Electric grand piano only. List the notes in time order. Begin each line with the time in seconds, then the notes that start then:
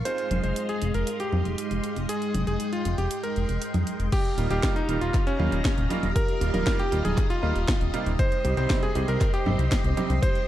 0.05 C5
0.44 C5
0.69 G#4
0.95 A#4
1.20 G4
2.09 G#4
2.47 G#4
2.73 F4
2.98 G4
3.23 A#4
4.12 G4
4.51 G4
4.76 D#4
5.01 F4
5.27 C#4
6.16 A#4
6.54 A#4
6.79 G4
7.05 G#4
7.30 F4
8.19 C5
8.57 C5
8.83 G#4
9.08 A#4
9.34 G4
10.22 C5